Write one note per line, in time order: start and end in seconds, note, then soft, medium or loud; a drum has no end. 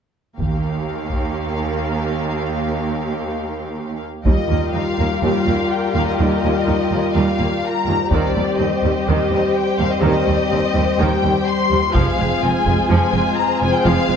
0.39 4.01 D#2 soft
0.39 0.84 D#2 soft
0.39 4.01 A#3 soft
0.39 4.02 G4 soft
0.39 4.02 F5 soft
0.39 taiko soft
1.11 taiko soft
4.25 4.34 D#2 soft
4.25 8.08 G3 soft
4.25 4.49 G3 soft
4.25 8.08 F4 soft
4.25 8.08 G4 soft
4.25 8.08 A#4 soft
4.25 4.70 D#5 soft
4.25 taiko soft
4.50 4.58 D#2 soft
4.50 4.59 A#3 soft
4.74 4.82 D#2 soft
4.74 4.82 D#4 soft
4.74 5.23 F5 medium
4.98 5.06 D#2 soft
4.98 5.07 D#2 soft
4.98 5.06 A#3 soft
5.22 5.30 D#2 soft
5.22 5.31 D#2 soft
5.22 5.46 G3 soft
5.22 5.71 F5 medium
5.46 5.54 D#2 soft
5.46 5.55 D#2 soft
5.46 5.56 A#3 soft
5.71 5.95 G5 soft
5.94 6.03 D#2 soft
5.94 6.04 D#2 soft
5.94 6.04 A#3 soft
5.94 6.06 F5 medium
6.06 6.17 D#5 soft
6.18 6.27 D#2 soft
6.18 6.28 D#2 soft
6.18 6.41 G3 soft
6.18 7.13 D#5 medium
6.43 6.51 D#2 soft
6.43 6.52 D#2 soft
6.43 6.51 A#3 soft
6.67 6.75 D#2 soft
6.67 6.76 D#2 soft
6.67 6.75 D#4 soft
6.92 7.00 D#2 soft
6.92 7.00 A#3 soft
7.14 7.23 D#2 soft
7.14 7.24 D#2 soft
7.14 7.38 G3 soft
7.14 7.63 F5 medium
7.39 7.47 D#2 soft
7.39 7.48 D#2 soft
7.39 7.47 A#3 soft
7.65 8.13 A#5 medium
7.87 7.95 D#2 soft
7.87 7.96 D#2 soft
7.87 7.96 A#3 soft
8.10 8.19 D#2 soft
8.10 8.34 D#3 soft
8.10 11.79 G3 soft
8.10 11.79 C4 soft
8.10 11.90 G4 soft
8.10 11.90 C5 soft
8.10 8.59 D5 medium
8.10 taiko soft
8.35 8.44 D#2 soft
8.35 8.43 G3 soft
8.58 8.68 D#2 soft
8.58 8.67 C4 soft
8.58 9.07 D#5 soft
8.83 8.91 D#2 soft
8.83 8.92 D#2 soft
8.83 8.91 G3 soft
9.07 9.16 D#2 soft
9.07 9.30 D#3 soft
9.07 9.55 D#5 medium
9.31 9.39 D#2 soft
9.31 9.40 D#2 soft
9.31 9.39 G3 soft
9.54 9.79 G5 medium
9.79 9.87 D#2 soft
9.79 9.88 G3 soft
9.79 9.91 F5 medium
9.92 10.03 D#5 soft
10.02 10.10 D#2 medium
10.02 10.12 D#2 medium
10.02 10.25 D#3 medium
10.02 10.97 D#5 medium
10.26 10.35 D#2 soft
10.26 10.36 D#2 soft
10.26 10.34 G3 soft
10.50 10.60 D#2 soft
10.50 10.61 D#2 soft
10.50 10.58 C4 soft
10.74 10.83 D#2 soft
10.74 10.84 D#2 soft
10.74 10.82 G3 soft
10.98 11.07 D#2 medium
10.98 11.09 D#2 medium
10.98 11.21 D#3 medium
10.98 11.47 G5 medium
11.23 11.32 D#2 soft
11.23 11.33 D#2 soft
11.23 11.31 G3 soft
11.46 11.95 C6 medium
11.71 11.79 D#2 soft
11.71 11.80 D#2 soft
11.71 11.79 G3 soft
11.94 12.04 F1 medium
11.94 12.03 F2 medium
11.94 12.16 F3 medium
11.94 14.16 G#3 soft
11.94 14.16 C4 soft
11.94 14.16 F4 medium
11.94 14.16 G#4 soft
11.94 14.16 C5 soft
11.94 12.43 F5 medium
11.94 taiko medium
12.17 12.28 F1 soft
12.17 12.27 F2 soft
12.17 12.25 G#3 soft
12.42 12.51 F1 soft
12.42 12.50 F2 soft
12.42 12.50 C4 soft
12.42 12.90 G#5 medium
12.66 12.74 F1 soft
12.66 12.75 F2 soft
12.66 12.75 G#3 soft
12.66 taiko soft
12.89 12.99 F1 medium
12.89 12.99 F2 medium
12.89 13.12 F3 medium
12.89 13.38 G#5 medium
13.12 13.22 F1 soft
13.12 13.22 F2 soft
13.12 13.20 G#3 medium
13.36 13.61 A#5 medium
13.61 13.71 F1 soft
13.61 13.70 F2 soft
13.61 13.69 G#3 soft
13.61 13.73 G#5 medium
13.73 13.85 G5 medium
13.84 13.94 F1 medium
13.84 13.93 F2 medium
13.84 14.07 F3 medium
13.84 14.16 F5 medium
14.08 14.16 F1 soft
14.08 14.16 F2 soft
14.08 14.16 G#3 soft